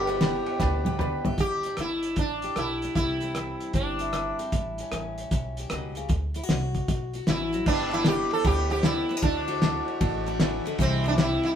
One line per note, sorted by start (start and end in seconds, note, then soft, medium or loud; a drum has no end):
0.00 0.39 G1 medium
0.00 0.19 G2 medium
0.00 0.85 B3 medium
0.00 0.16 D4 medium
0.00 0.16 G4 medium
0.00 0.95 G4 loud
0.00 0.06 A4 medium
0.00 0.16 B4 medium
0.00 1.37 D5 medium
0.00 0.03 F#5 medium
0.00 1.38 G5 medium
0.06 1.38 D4 medium
0.06 1.37 B4 medium
0.06 ride medium
0.21 0.57 D3 medium
0.21 0.55 D4 medium
0.21 0.55 G4 medium
0.21 0.55 B4 medium
0.21 snare loud
0.21 ride medium
0.46 0.60 G5 medium
0.46 ride medium
0.60 1.17 D2 medium
0.60 0.97 G2 medium
0.60 0.94 D4 medium
0.60 0.94 G4 medium
0.60 0.94 B4 medium
0.60 0.84 A5 medium
0.60 kick loud
0.60 snare medium
0.85 1.37 B3 medium
0.85 0.97 G5 medium
0.85 high tom medium
0.99 1.37 D3 medium
0.99 1.33 D4 medium
0.99 1.33 G4 medium
0.99 1.33 B4 loud
0.99 1.23 G5 medium
0.99 mid tom loud
1.25 1.37 G4 medium
1.25 1.38 E5 medium
1.25 floor tom medium
1.38 1.67 G1 medium
1.38 1.76 G2 medium
1.38 1.76 G4 loud
1.38 kick loud
1.38 closed hi-hat medium
1.63 2.83 D4 medium
1.63 closed hi-hat medium
1.77 2.12 G1 medium
1.77 2.15 D3 medium
1.77 2.19 E4 medium
1.77 cross-stick medium
1.77 closed hi-hat medium
2.03 closed hi-hat medium
2.16 2.50 A1 medium
2.16 2.55 G2 medium
2.16 2.58 D4 medium
2.16 kick loud
2.16 closed hi-hat medium
2.42 4.00 G4 medium
2.42 closed hi-hat medium
2.56 2.90 B1 medium
2.56 2.93 D3 medium
2.56 2.95 E4 medium
2.56 cross-stick loud
2.56 closed hi-hat medium
2.82 2.95 D4 medium
2.82 closed hi-hat medium
2.95 3.53 C2 medium
2.95 3.33 C3 medium
2.95 3.36 E3 soft
2.95 6.12 G3 medium
2.95 3.74 E4 medium
2.95 kick loud
2.95 closed hi-hat medium
2.99 3.21 C4 medium
3.21 4.38 C4 medium
3.21 closed hi-hat soft
3.35 3.72 E3 medium
3.35 cross-stick loud
3.35 closed hi-hat medium
3.60 closed hi-hat medium
3.73 4.31 G1 medium
3.73 4.12 G2 medium
3.73 4.35 D4 medium
3.73 kick loud
3.73 closed hi-hat medium
3.99 5.57 E4 medium
3.99 closed hi-hat medium
4.13 4.50 E3 medium
4.13 cross-stick medium
4.13 closed hi-hat medium
4.39 4.51 C4 medium
4.39 closed hi-hat soft
4.52 4.81 A1 medium
4.52 4.90 A2 medium
4.52 kick loud
4.52 closed hi-hat medium
4.78 6.09 C#4 medium
4.78 closed hi-hat medium
4.92 5.25 A1 medium
4.92 5.29 E3 medium
4.92 cross-stick medium
4.92 closed hi-hat medium
5.18 closed hi-hat medium
5.31 5.65 B1 medium
5.31 5.69 E2 medium
5.31 kick loud
5.31 closed hi-hat medium
5.57 6.09 G4 medium
5.57 closed hi-hat medium
5.70 6.05 C#2 medium
5.70 5.96 B2 medium
5.70 cross-stick loud
5.70 closed hi-hat medium
5.95 6.10 C#3 medium
5.95 closed hi-hat soft
6.09 6.38 D2 medium
6.09 6.46 D3 medium
6.09 kick loud
6.09 closed hi-hat medium
6.34 6.43 E4 medium
6.34 closed hi-hat medium
6.43 7.14 F#4 medium
6.49 6.82 C2 medium
6.49 6.86 A3 medium
6.49 snare medium
6.49 closed hi-hat medium
6.74 kick medium
6.74 closed hi-hat medium
6.88 7.22 B1 medium
6.88 7.25 A2 medium
6.88 kick loud
6.88 closed hi-hat medium
7.13 7.66 F#4 medium
7.13 closed hi-hat soft
7.27 7.61 A1 medium
7.27 7.53 E3 medium
7.27 7.67 E4 medium
7.27 snare medium
7.27 closed hi-hat medium
7.53 7.67 F#3 medium
7.53 closed hi-hat medium
7.66 8.24 G1 medium
7.66 8.04 G2 medium
7.66 8.70 B3 medium
7.66 7.93 D4 loud
7.66 8.01 D4 medium
7.66 8.01 G4 medium
7.66 8.01 B4 medium
7.66 kick loud
7.66 crash loud
7.91 9.10 D4 medium
7.91 8.06 E4 loud
7.91 ride medium
8.04 8.42 D3 medium
8.04 8.40 D4 medium
8.04 8.40 G4 medium
8.04 8.33 G4 medium
8.04 8.40 B4 medium
8.04 snare loud
8.04 ride medium
8.31 8.46 A4 loud
8.31 ride medium
8.44 9.02 D2 medium
8.44 8.81 G2 medium
8.44 8.79 D4 medium
8.44 8.79 G4 medium
8.44 8.70 G4 loud
8.44 8.79 B4 medium
8.44 kick loud
8.44 ride loud
8.70 9.09 B3 medium
8.70 8.84 G4 loud
8.70 ride medium
8.83 9.21 D3 medium
8.83 9.18 D4 medium
8.83 9.23 E4 medium
8.83 9.18 G4 medium
8.83 9.18 B4 medium
8.83 snare loud
8.83 ride medium
9.09 9.17 B3 medium
9.09 ride medium
9.17 9.22 D4 medium
9.22 9.80 D2 medium
9.22 9.59 D3 medium
9.22 9.57 D4 medium
9.22 10.26 D4 medium
9.22 9.84 D4 medium
9.22 9.57 F#4 medium
9.22 9.57 A4 medium
9.22 kick loud
9.22 ride medium
9.48 10.77 F#4 medium
9.48 ride medium
9.62 9.99 A3 medium
9.62 9.96 D4 medium
9.62 9.96 F#4 medium
9.62 9.96 A4 medium
9.62 snare loud
9.62 ride medium
9.88 ride medium
10.01 10.58 A1 medium
10.01 10.37 A2 medium
10.01 10.35 D4 medium
10.01 10.35 F#4 medium
10.01 10.35 A4 loud
10.01 kick loud
10.01 ride medium
10.26 10.78 D4 medium
10.26 10.39 A5 medium
10.26 ride medium
10.40 10.66 E3 medium
10.40 10.74 D4 medium
10.40 10.74 F#4 medium
10.40 10.74 A4 medium
10.40 10.77 E5 medium
10.40 snare loud
10.40 ride medium
10.65 10.80 D3 medium
10.65 ride medium
10.78 11.36 C2 medium
10.78 11.16 C3 medium
10.78 11.17 E3 medium
10.78 11.55 G3 medium
10.78 11.04 C4 loud
10.78 11.05 C4 medium
10.78 11.13 E4 medium
10.78 11.13 G4 medium
10.78 11.13 C5 medium
10.78 kick loud
10.78 ride medium
10.83 11.55 E4 medium
11.04 11.55 C4 medium
11.04 ride medium
11.08 11.13 D4 loud
11.18 11.55 E3 medium
11.18 11.53 E4 medium
11.18 11.43 E4 medium
11.18 11.53 G4 medium
11.18 11.53 C5 medium
11.18 snare loud
11.18 ride medium
11.43 11.50 E4 medium
11.43 ride medium